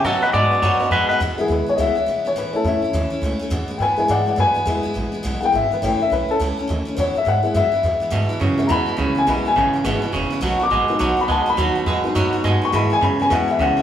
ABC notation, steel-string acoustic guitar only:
X:1
M:4/4
L:1/8
Q:"Swing" 1/4=208
K:E
V:1 name="Steel-string acoustic guitar"
[B,,F,B,DF] [B,DF] [F,B,DF] [B,DF] [B,,F,B,DF] [B,DF] [F,B,DF] [B,DF] | [E,,B,,E,G,B,E] [E,G,B,E] [E,G,B,E] [E,G,B,E] [E,,B,,E,G,B,E] [E,G,B,E] [E,G,B,E] [E,G,B,E] | [A,,E,A,CE] [A,CE] [E,A,CE] [A,CE] [A,,E,A,CE] [A,CE] [E,A,CE] [A,CE] | [E,,B,,E,G,B,E] [E,G,B,E] [E,G,B,E] [E,G,B,E] [E,,B,,E,G,B,E] [E,G,B,E] [E,G,B,E] [E,G,B,E] |
[E,,B,,E,G,B,E] [E,G,B,E] [E,G,B,E] [E,G,B,E] [E,,B,,E,G,B,E] [E,G,B,E] [E,G,B,E] [E,G,B,E] | [A,,E,A,CE] [A,CE] [E,A,CE] [A,CE] [A,,E,A,CE] [A,CE] [E,A,CE] [A,CE] | [E,,B,,E,G,B,E] [E,G,B,E] [E,G,B,E] [E,G,B,E] [E,,B,,E,G,B,E] [E,G,B,E] [E,G,B,E] [E,G,B,E] | [E,,B,,E,G,B,E] [E,G,B,E] [E,G,B,E] [E,G,B,E] [E,,B,,E,G,B,E] [E,G,B,E] [E,G,B,E] [E,G,B,E] |
[E,,B,,E,G,B,E] [E,G,B,E] [E,G,B,E] [E,G,B,E] [E,,B,,E,G,B,E] [E,G,B,E] [E,G,B,E] [E,G,B,E] | [B,,F,B,DF] [B,DF] [F,B,DF] [B,DF] [B,,F,B,DF] [B,DF] [F,B,DF] [B,DF] | [B,,F,B,DF] [B,DF] [F,B,DF] [B,DF] [B,,F,B,DF] [B,DF] [F,B,DF] [B,DF] | [E,,B,,E,B,EG] [E,B,EG] [E,B,EG] [E,B,EG] [E,,B,,E,B,EG] [E,B,EG] [E,B,EG] [B,EG] |]